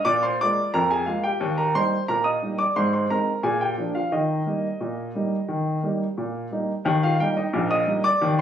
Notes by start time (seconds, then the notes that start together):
0.05 A#2 D5 D6
0.23 C5 C6
0.41 G#3 A#3 F4 D5 D6
0.74 F2 A#4 A#5
0.91 G#4 G#5
1.06 G#3 A#3 F4 F5
1.23 G4 G5
1.40 D#2
1.58 A#4 A#5
1.75 G3 A#3 D#4 C5 C6
2.08 A#2 A#4 A#5
2.24 D#5 D#6
2.42 G3 A#3 D#4
2.58 D5 D6
2.76 G#2 C5 C6
2.93 C5 C6
3.10 G#3 C4 D#4 A#4 A#5
3.43 A#2 G#4 G#5
3.61 G4 G5
3.78 F3 A#3 D4
3.95 F4 F5
4.12 D#3 D#4 D#5
4.46 G3 A#3 D#4
4.81 A#2
5.15 G3 A#3 D#4
5.48 D#3
5.83 G3 A#3 D#4
6.18 A#2
6.51 G3 A#3 D#4
6.85 D#2 D#3
7.03 F4 F5
7.20 G3 A#3 D#4 G4 G5
7.37 D#4 D#5
7.53 A#1 A#2
7.71 D#5 D#6
7.87 G3 A#3 D#4
8.04 D5 D6
8.21 D#2 D#3